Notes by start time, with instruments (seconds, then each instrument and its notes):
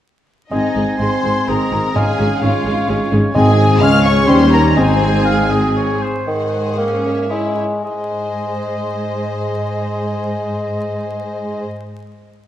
0.51 tuba G#1, double bass section G#1, cello section G#2, bassoon G#3, french horn section G#3 C4, viola section C4 G#4, clarinet C4, violin section D#4 D#5, flute D#5, oboe G#5
0.75 double bass section G#1, tuba G#1, cello section G#2, viola section C4 G#4
0.99 double bass section G#1, tuba G#1, cello section G#2, viola section C4 G#4, violin section C5 C6, flute C6
1.24 tuba G#1, double bass section G#1, cello section G#2, viola section C4 G#4
1.47 tuba G#1, double bass section G#1, cello section G#2, viola section C4 G#4, violin section A#4 A#5, oboe D#5, flute A#5
1.71 tuba G#1, double bass section G#1, cello section G#2, viola section C4 G#4
1.95 double bass section G#1, tuba G#1, cello section G#2, timpani G#2, bassoon G#3, french horn section C#4, viola section C#4 G#4, clarinet C#4, violin section G#4 G#5, oboe F5, flute G#5
2.19 double bass section G#1, tuba G#1, cello section G#2, viola section C#4 G#4
2.42 double bass section G#1, tuba G#1, cello section G#2, viola section C#4 G#4, violin section F4 F5, oboe C#5, flute F5
2.65 tuba G#1, double bass section G#1, cello section G#2, viola section C#4 G#4
2.88 double bass section G#1, tuba G#1, cello section G#2, viola section C#4 G#4, oboe C#5
3.12 tuba G#1, double bass section G#1, cello section G#2, viola section C#4 G#4
3.35 tuba G#1, double bass section G#1, cello section G#2, timpani G#2, bassoon G#3, french horn section G#3 C4, viola section C4 G#4, clarinet C4, violin section G#4 G#5, oboe D#5, flute G#5
3.80 cello section C#2, double bass section C#2, tuba C#2, bassoon G#3, viola section C#4 G#4, clarinet C#4, french horn section C#4, oboe C#5, violin section F5 F6, flute F6
4.04 violin section C#5 C#6, flute C#6
4.28 tuba D#2, double bass section D#2, cello section D#2, bassoon G3, french horn section G3, viola section C#4 G4, clarinet C#4, violin section C5 C6, flute C6
4.52 violin section A#4 A#5, flute A#5
4.76 double bass section G#1, tuba G#1, cello section G#2, bassoon G#3, french horn section G#3 C4, clarinet C4, viola section C4 G#4, violin section G#4 G#5, oboe C5, flute G#5
5.25 oboe F5
5.50 oboe D#5
5.76 oboe C#5
6.01 oboe C5
6.27 cello section G#2, bassoon D#3, violin section G#4 C5 F#5
6.78 bassoon A#3, viola section C#4
7.05 violin section C#5 E5
7.31 bassoon G#3, viola section E4
7.84 cello section G#2, bassoon G#3, viola section G#4, violin section C5 D#5